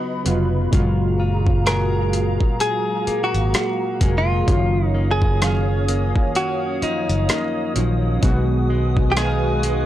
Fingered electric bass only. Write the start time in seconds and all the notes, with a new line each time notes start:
0.26 F1
0.73 F#1
3.07 muted fingered electric bass stroke
3.34 G#1
4.01 F1
4.48 F#1
6.82 muted fingered electric bass stroke
7.09 F#1
7.76 A#1
8.23 B1